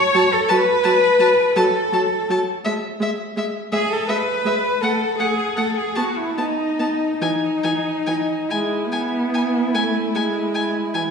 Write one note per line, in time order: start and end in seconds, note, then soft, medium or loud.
0.00 0.34 C#5 loud
0.00 0.35 C#5 loud
0.14 0.22 F#3 medium
0.14 0.23 A5 soft
0.32 0.51 A4 medium
0.32 0.52 A4 medium
0.48 0.58 F#3 medium
0.48 1.58 B4 medium
0.48 1.56 B4 medium
0.48 0.56 A5 medium
0.84 0.92 F#3 medium
0.84 0.92 A5 medium
1.19 1.27 F#3 soft
1.19 1.28 A5 medium
1.56 1.64 F#3 medium
1.56 2.30 A4 medium
1.56 2.29 A4 medium
1.56 1.64 A5 medium
1.92 2.00 F#3 medium
1.92 2.01 A5 soft
2.29 2.37 F#3 medium
2.29 2.39 A5 soft
2.65 2.73 G#3 medium
2.65 2.73 E5 medium
3.00 3.08 G#3 medium
3.00 3.10 E5 soft
3.36 3.44 G#3 soft
3.36 3.45 E5 soft
3.72 3.80 G#3 medium
3.72 3.91 G#4 medium
3.72 3.94 G#4 medium
3.72 3.80 E5 soft
3.90 4.09 A4 medium
3.90 4.11 A4 medium
4.07 4.17 G#3 soft
4.07 4.82 B4 medium
4.07 4.84 B4 medium
4.07 4.17 E5 soft
4.45 4.53 G#3 soft
4.45 4.54 E5 soft
4.81 4.90 A3 soft
4.81 5.21 A4 medium
4.81 5.19 A4 medium
4.81 4.91 F#5 soft
5.19 5.28 A3 soft
5.19 5.60 G#4 medium
5.19 5.56 G#4 medium
5.19 5.28 F#5 soft
5.57 5.65 A3 soft
5.57 5.76 A4 medium
5.57 5.79 A4 medium
5.57 5.65 F#5 soft
5.77 5.99 G#4 medium
5.77 5.98 G#4 medium
5.95 6.05 B3 soft
5.95 6.19 F#4 medium
5.95 6.20 F#4 soft
5.95 6.03 A5 soft
6.18 6.39 E4 medium
6.18 6.37 E4 soft
6.37 6.46 B3 soft
6.37 7.20 D#4 medium
6.37 7.19 D#4 medium
6.37 6.46 A5 soft
6.79 6.87 B3 soft
6.79 6.87 A5 soft
7.20 7.29 E3 soft
7.20 8.50 D#4 medium
7.20 8.51 D#4 medium
7.20 7.30 G#5 soft
7.64 7.72 E3 soft
7.64 7.72 G#5 soft
8.07 8.15 E3 soft
8.07 8.15 G#5 soft
8.48 8.89 G#3 soft
8.48 11.11 E4 soft
8.48 8.59 G#5 soft
8.92 9.76 B3 medium
8.92 9.00 G#5 soft
9.34 9.42 G#5 soft
9.74 10.16 A3 medium
9.74 9.82 G#5 soft
10.14 10.95 G#3 soft
10.14 10.23 G#5 soft
10.55 10.63 G#5 soft
10.94 11.11 E3 soft
10.94 11.02 G#5 soft